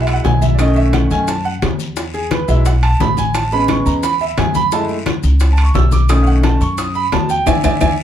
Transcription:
Already playing: upright bass B1, grand piano F#3 G#3 E4
0.02 grand piano E5
0.07 high conga, high timbale, claves, maracas
0.13 grand piano F#5
0.24 upright bass B1, grand piano G#5, high bongo, low bongo, high conga, low timbale, short guiro, maracas
0.42 grand piano E5, high bongo, high conga, short guiro, maracas
0.55 grand piano D#3 D5, high timbale
0.59 grand piano A3 C#4 D#5, high bongo, high conga, long guiro, claves, maracas
0.76 grand piano E5, high conga, maracas
0.93 grand piano F#5, high bongo, high conga, high timbale, low timbale, short guiro, claves, maracas
1.10 upright bass F#2, grand piano D#3 A3 C#4 G#5, short guiro, maracas
1.28 grand piano A5, high bongo, high conga, high timbale, long guiro, maracas
1.45 grand piano F#5, high conga, maracas
1.62 upright bass E2, high bongo, low bongo, high conga, high timbale, low timbale, short guiro, claves, maracas
1.79 short guiro, maracas
1.96 high bongo, high conga, high timbale, long guiro, maracas
2.14 grand piano G#4, high bongo, high conga, maracas
2.31 grand piano B4, high bongo, high conga, high timbale, low timbale, short guiro, claves, maracas
2.48 upright bass B1, grand piano F#3 G#3 E4 E5, high bongo, short guiro, maracas
2.65 grand piano F#5, high bongo, high timbale, long guiro, maracas
2.83 grand piano A5, high conga, high timbale, claves, maracas
3.00 upright bass A1, grand piano B5, high bongo, low bongo, high conga, low timbale, short guiro, maracas
3.17 grand piano G#5, high bongo, high conga, short guiro, maracas
3.34 grand piano A5, high bongo, high conga, high timbale, long guiro, claves, maracas
3.51 grand piano G#3 B3 C#4 B5, high conga, maracas
3.68 grand piano C#6, high bongo, high conga, high timbale, low timbale, short guiro, claves, maracas
3.85 upright bass E2, grand piano A#5, short guiro, maracas
4.03 grand piano B5, high bongo, high conga, high timbale, long guiro, maracas
4.20 grand piano E5, high conga, maracas
4.37 upright bass F#2, grand piano G#5, high bongo, low bongo, high conga, high timbale, low timbale, short guiro, claves, maracas
4.54 grand piano B5, high conga, short guiro, maracas
4.72 grand piano G#3 A3 E4 A5, high bongo, high conga, high timbale, long guiro, maracas
4.89 high bongo, high conga, maracas
5.06 high bongo, high conga, high timbale, low timbale, short guiro, claves, maracas
5.23 upright bass C#2, high bongo, high conga, short guiro, maracas
5.40 high bongo, high conga, high timbale, long guiro, maracas
5.53 grand piano A5
5.57 high conga, high timbale, claves, maracas
5.63 grand piano C#6
5.74 upright bass B1, grand piano E6, high bongo, low bongo, high conga, low timbale, short guiro, maracas
5.92 grand piano D6, high bongo, high conga, short guiro, maracas
6.09 grand piano D#3 A3 C#4 D#6, high bongo, high conga, high timbale, long guiro, claves, maracas
6.22 grand piano F5, high conga
6.27 grand piano F#5, maracas
6.43 grand piano A5, high bongo, high conga, high timbale, low timbale, short guiro, claves, maracas
6.60 upright bass F#2, grand piano C#6, short guiro, maracas
6.78 grand piano D#6, high bongo, high conga, high timbale, long guiro, maracas
6.95 grand piano B5, high conga, maracas
7.12 upright bass E2, grand piano A5, high bongo, low bongo, high conga, high timbale, low timbale, short guiro, claves, maracas
7.29 grand piano G5, short guiro, maracas
7.46 upright bass E2, grand piano D5 E5 G#5, high bongo, high conga, high timbale, long guiro, claves, maracas
7.63 upright bass E2, grand piano D5 E5 G#5, high bongo, high conga, high timbale, long guiro, claves, maracas
7.81 upright bass E2, grand piano D5 E5 G#5, high bongo, high conga, high timbale, long guiro, claves, maracas

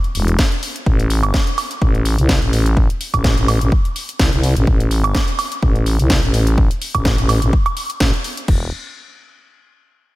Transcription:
0.04 closed hi-hat
0.15 fm bass E1, open hi-hat
0.28 closed hi-hat
0.39 kick, snare
0.52 closed hi-hat
0.63 open hi-hat
0.76 closed hi-hat
0.86 fm bass A1, kick
1.00 closed hi-hat
1.10 open hi-hat
1.23 closed hi-hat, high woodblock
1.34 kick, snare
1.47 closed hi-hat
1.58 open hi-hat, high woodblock
1.71 closed hi-hat
1.82 fm bass A1, kick
1.95 closed hi-hat
2.05 open hi-hat
2.18 fm bass C2, closed hi-hat
2.29 kick, snare
2.42 fm bass A1, closed hi-hat
2.53 open hi-hat
2.66 closed hi-hat
2.77 kick
2.90 closed hi-hat
3.01 open hi-hat
3.14 fm bass A1, kick, closed hi-hat, high woodblock
3.24 kick, snare
3.37 fm bass A1, closed hi-hat
3.48 open hi-hat, high woodblock
3.61 fm bass A1, closed hi-hat
3.72 kick
3.85 closed hi-hat
3.96 open hi-hat
4.09 closed hi-hat
4.19 fm bass C2, kick, snare
4.33 fm bass C2, closed hi-hat
4.43 open hi-hat
4.56 fm bass A1, closed hi-hat
4.67 fm bass A1, kick
4.80 closed hi-hat
4.91 open hi-hat
5.04 closed hi-hat, high woodblock
5.15 kick, snare
5.28 closed hi-hat
5.39 open hi-hat, high woodblock
5.52 closed hi-hat
5.63 fm bass A1, kick
5.76 closed hi-hat
5.86 open hi-hat
5.99 fm bass C2, closed hi-hat
6.10 kick, snare
6.23 fm bass A1, closed hi-hat
6.34 open hi-hat
6.47 closed hi-hat
6.58 kick
6.71 closed hi-hat
6.82 open hi-hat
6.95 fm bass A1, kick, closed hi-hat, high woodblock
7.05 kick, snare
7.18 fm bass A1, closed hi-hat
7.29 open hi-hat, high woodblock
7.42 fm bass A1, closed hi-hat
7.53 kick
7.66 closed hi-hat, high woodblock
7.77 open hi-hat
7.90 closed hi-hat
8.00 fm bass A1, kick, snare
8.14 closed hi-hat
8.24 open hi-hat
8.37 closed hi-hat
8.48 fm bass E1, kick, crash

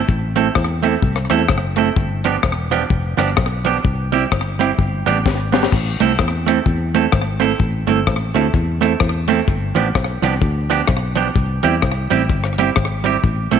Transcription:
0.08 fingered electric bass A1, kick, hi-hat pedal
0.36 clean electric guitar A3 C4 E4 A4, closed hi-hat
0.55 fingered electric bass E2, kick, cross-stick
0.83 clean electric guitar A3 C4 E4 A4, closed hi-hat
1.02 fingered electric bass C2, kick
1.16 cross-stick
1.30 fingered electric bass E2, clean electric guitar A3 C4 E4 A4, cross-stick, closed hi-hat
1.49 fingered electric bass F#1, kick, cross-stick
1.76 clean electric guitar A3 C4 E4 A4, closed hi-hat
1.96 fingered electric bass G1, kick
2.24 clean electric guitar F3 B3 D4 G4, closed hi-hat
2.43 fingered electric bass E1, kick, cross-stick
2.71 clean electric guitar F3 B3 D4 G4, closed hi-hat
2.90 fingered electric bass F1, kick
3.17 fingered electric bass G1, clean electric guitar F3 B3 D4 G4, cross-stick, closed hi-hat
3.36 fingered electric bass B1, muted clean electric guitar stroke, kick, cross-stick
3.65 clean electric guitar F3 B3 D4 G4, closed hi-hat
3.84 fingered electric bass C2, kick
4.12 clean electric guitar G3 C4 E4 G4, closed hi-hat
4.31 fingered electric bass G1, kick, cross-stick
4.59 clean electric guitar G3 C4 E4 G4, closed hi-hat
4.78 fingered electric bass G1, kick
5.06 fingered electric bass A1, clean electric guitar G3 B3 D4 G4, closed hi-hat
5.26 fingered electric bass G#1, kick, snare
5.52 clean electric guitar G3 B3 D4 G4, snare
5.63 snare
5.72 fingered electric bass A1, kick, crash
6.00 fingered electric bass C2, clean electric guitar A3 C4 E4 A4, closed hi-hat
6.19 fingered electric bass E2, kick, cross-stick, closed hi-hat
6.47 clean electric guitar A3 C4 E4 A4, closed hi-hat
6.66 fingered electric bass E2, kick, closed hi-hat
6.95 clean electric guitar A3 C4 E4 A4, closed hi-hat
7.12 fingered electric bass G#1, muted clean electric guitar stroke, kick, cross-stick, closed hi-hat
7.40 clean electric guitar A3 C4 E4 A4, open hi-hat
7.60 fingered electric bass A1, kick, closed hi-hat
7.87 fingered electric bass G1, clean electric guitar A3 C4 E4 A4, closed hi-hat
8.07 fingered electric bass A1, kick, cross-stick, closed hi-hat
8.35 fingered electric bass D2, clean electric guitar A3 C4 E4 A4, closed hi-hat
8.54 fingered electric bass E2, kick, closed hi-hat
8.81 clean electric guitar A3 C4 E4 A4, closed hi-hat
9.00 fingered electric bass E2, kick, cross-stick, closed hi-hat
9.28 clean electric guitar A3 C4 E4 A4, closed hi-hat
9.48 fingered electric bass G1, kick, closed hi-hat
9.75 fingered electric bass A1, clean electric guitar F3 B3 D4 G4, closed hi-hat
9.95 fingered electric bass B1, kick, cross-stick, closed hi-hat
10.22 fingered electric bass C2, clean electric guitar F3 B3 D4 G4, closed hi-hat
10.41 fingered electric bass D2, kick, closed hi-hat
10.70 clean electric guitar F3 B3 D4 G4, closed hi-hat
10.88 fingered electric bass B1, muted clean electric guitar stroke, kick, cross-stick, closed hi-hat
11.16 clean electric guitar F3 B3 D4 G4, closed hi-hat
11.36 fingered electric bass C2, kick, closed hi-hat
11.63 fingered electric bass E2, clean electric guitar G3 C4 E4 G4, closed hi-hat
11.82 fingered electric bass C2, kick, cross-stick, closed hi-hat
12.10 fingered electric bass A1, clean electric guitar G3 C4 E4 G4, closed hi-hat
12.30 fingered electric bass G1, kick, closed hi-hat
12.44 cross-stick
12.58 clean electric guitar G3 C4 E4 G4, closed hi-hat
12.76 fingered electric bass G#1, kick, cross-stick, closed hi-hat
13.04 clean electric guitar G3 C4 E4 G4, closed hi-hat
13.24 fingered electric bass A1, kick, closed hi-hat
13.51 fingered electric bass B1, clean electric guitar A3 C4 E4 A4, closed hi-hat

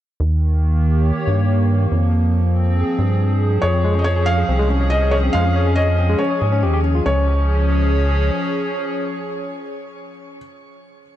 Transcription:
0.20 analog synth bass D#2, analog synth pad D#3
0.44 analog synth pad A#3
0.80 analog synth pad G4
0.97 analog synth pad C#5
1.27 analog synth bass G2
1.91 analog synth bass F2, analog synth pad F3
2.37 analog synth pad C4
2.69 analog synth pad G#4
2.99 analog synth bass G2
3.62 analog synth bass F2, tine electric piano G#4, felt piano C#5
3.74 tine electric piano C4
3.84 tine electric piano G#3
3.95 tine electric piano C#4, felt piano D#5
4.04 felt piano C#5, tine electric piano C#5
4.10 analog synth pad C#4
4.16 tine electric piano G#4
4.26 tine electric piano C#5, felt piano F5
4.38 tine electric piano G#4
4.49 analog synth bass C2, tine electric piano C4
4.59 tine electric piano G#3
4.70 tine electric piano C#4
4.81 tine electric piano C#5
4.90 tine electric piano G#4, felt piano D#5
5.02 tine electric piano C#5
5.11 tine electric piano G#4, felt piano C#5
5.24 tine electric piano C4
5.33 analog synth bass F2, tine electric piano G#3, felt piano F5
5.45 tine electric piano C#4
5.56 tine electric piano C#5
5.67 tine electric piano G#4
5.76 tine electric piano C#5, felt piano D#5
5.88 tine electric piano G#4
5.99 tine electric piano C4
6.09 tine electric piano G#3
6.18 tine electric piano C#4, felt piano C#5
6.31 tine electric piano C#5
6.41 analog synth bass G#2, tine electric piano G#4
6.52 tine electric piano C#4
6.63 analog synth bass D#2, tine electric piano G4
6.74 tine electric piano G4
6.84 tine electric piano C#4
6.95 tine electric piano F4
7.06 analog synth bass C#2, analog synth pad F3, tine electric piano C#4, felt piano C#5
7.12 analog synth pad C#4
7.19 analog synth pad G#4
7.25 analog synth pad C#5

